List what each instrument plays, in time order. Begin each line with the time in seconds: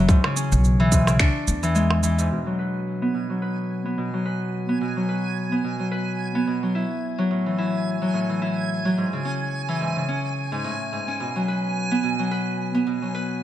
Already playing: harp A2 E3 F#3 B3 E4
0.09 harp G#2, kick, shaker
0.24 harp C#3, percussion blips
0.36 harp C#4, shaker
0.52 upright bass B1, shaker
0.64 shaker
0.80 harp E3
0.92 harp G#2, kick, shaker
1.07 harp C#3, percussion blips, shaker
1.19 harp D4, finger snap, kick, shaker
1.48 upright bass E2, shaker
1.63 harp E3, shaker
1.75 harp G#3, shaker
1.91 percussion blips
2.03 harp E3, shaker
2.18 harp G#2, shaker
2.31 harp B2, synth texture G#5
2.46 harp F#3
2.59 harp B4
3.02 harp B3
3.14 harp B2
3.30 harp F#3
3.42 harp B4
3.85 harp B3
3.98 harp B2
4.14 harp F#3
4.25 harp B4
4.69 harp B3
4.81 harp B2
4.97 harp F#3
5.09 harp B4
5.52 harp B3
5.64 harp B2
5.79 harp F#3
5.91 harp B4
6.35 harp B3
6.47 harp B2
6.63 harp F#3
6.75 harp E4
7.18 harp F#3
7.31 harp A2
7.46 harp E3
7.58 harp E4
8.02 harp F#3
8.14 harp A2
8.29 harp E3
8.42 harp E4
8.85 harp F#3
8.97 harp G#2
9.13 harp C#3
9.25 harp C#4
9.68 harp E3
9.81 harp G#2
9.96 harp C#3
10.08 harp C#4
10.52 harp G#2
10.64 harp A2
10.92 harp G#2
11.08 harp C#4
11.20 harp B2
11.36 harp F#3
11.48 harp B4
11.91 harp B3
12.03 harp B2
12.19 harp F#3
12.31 harp B4
12.74 harp B3
12.87 harp B2
13.02 harp F#3
13.15 harp B4